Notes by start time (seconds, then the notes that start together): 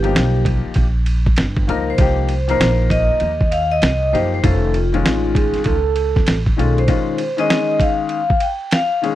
Already playing: G1 G4
0.03 F3 A#3 D#4 G4, ride
0.15 B1, snare, hi-hat pedal, ride
0.45 kick, ride
0.66 muted upright bass stroke
0.74 A#1, kick, ride
1.06 ride
1.26 kick
1.36 G1, snare, hi-hat pedal, ride
1.57 kick
1.68 C#2 F3 A#3 D#4 A#4, ride
1.90 C5
1.98 C2 F3 A#3 D#4 G4, kick, ride
2.29 ride
2.48 F3 A#3 D#4 A#4 C5, ride
2.60 A#1, snare, hi-hat pedal, ride
2.90 D#5, kick, ride
3.11 muted upright bass stroke
3.20 D#2, ride
3.41 kick
3.52 F5, ride
3.72 D#5
3.82 C2, snare, hi-hat pedal, ride
4.13 F#1 F3 A#3 D#4 G4 C5, ride
4.34 C5
4.43 F1 D#3 A3 C#4 F4 A4, kick, ride
4.74 F4, ride
4.93 D#3 G#3 C#4 F4, ride
5.05 A1, snare, hi-hat pedal, ride
5.35 G#4, kick, ride
5.54 muted upright bass stroke, snare, ride
5.64 C#2 A4, kick, ride
5.96 ride
6.16 kick, snare
6.27 A1, snare, hi-hat pedal, ride
6.46 kick
6.57 B1 D#3 G#3 C#4 F4 A4, ride
6.78 C5, ride
6.87 D#3 G#3 C#4 F4, kick, ride
7.18 ride
7.37 D#3 G#3 C#4 G#4 D#5, ride
7.50 snare, hi-hat pedal, ride
7.80 F5, kick, ride
8.09 F5, ride
8.30 kick
8.40 G5, ride
8.71 F5, snare, hi-hat pedal, ride
9.02 D#3 G#3 C#4 G#4, ride